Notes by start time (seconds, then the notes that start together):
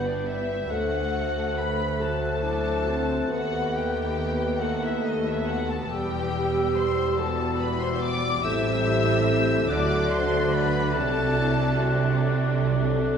Already playing: G1 G2 G3 B3 B4 G6
0.04 D4 D5
0.27 E4 E5
0.69 D2 A3 F#4 A4 C5 F#5 F#6
1.57 B4 B5
2.00 F#3 A3 F#4 A4 A5
2.42 D4 E4
2.86 C4 F#4
3.30 D#2 B3 F#4 B4 F#5
3.74 G4 G5
4.60 A3 B3 F#4 A4 F#5
4.83 E4 E5
5.04 D#4 D#5
5.26 E4 E5
5.48 F#4 F#5
5.70 A4 A5
5.91 E1 E2 G3 B3 G4 G5 E6
6.76 C5 C6
7.17 E3 B3 F#4 A4 A5
7.59 B4 B5
7.81 C5 C6
8.02 D5 D6
8.43 A1 A2 G3 A3 C4 E4 C5 E5 E6 G6
9.68 D2 D3 F#3 D4 F#4 D5 D6 F#6
10.10 C5 C6
10.52 B4 B5
10.94 C2 C3 F#3 D4 A4 A5
11.37 E4
11.78 F#4
12.21 A4